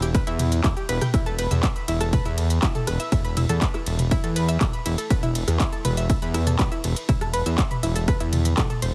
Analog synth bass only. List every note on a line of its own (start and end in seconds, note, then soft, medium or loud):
0.00 0.24 E1 medium
0.27 0.61 E2 loud
0.64 0.75 E1 medium
0.89 0.99 E1 medium
1.14 1.48 E1 loud
1.51 1.61 E2 medium
1.88 2.22 E1 loud
2.25 2.59 E2 loud
2.63 2.73 E1 medium
2.87 2.98 E1 medium
3.12 3.46 E1 loud
3.49 3.60 E2 medium
3.86 4.21 E1 loud
4.24 4.58 E2 loud
4.61 4.71 E1 medium
4.86 4.96 E1 medium
5.10 5.45 E1 loud
5.48 5.58 E2 medium
5.85 6.19 E1 loud
6.22 6.56 E2 loud
6.59 6.70 E1 medium
6.84 6.94 E1 medium
7.09 7.43 E1 loud
7.46 7.56 E2 medium
7.83 8.17 E1 loud
8.20 8.54 E2 loud
8.58 8.68 E1 loud
8.82 8.93 E1 medium